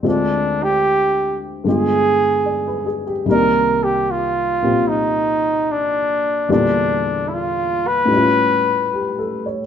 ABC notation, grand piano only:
X:1
M:4/4
L:1/16
Q:"Swing" 1/4=75
K:Cm
V:1 name="Grand piano"
z12 d =B A G | z16 | z12 (3G2 =A2 ^c2 |]
V:2 name="Grand piano" clef=bass
[D,,D,A,CF]8 [G,,D,A,=B,F]8 | [C,,C,E,B,d]6 [B,,F,CG]8- [B,,F,CG]2 | [=E,,B,,D,G,D]8 [=A,,G,^C=EF]8 |]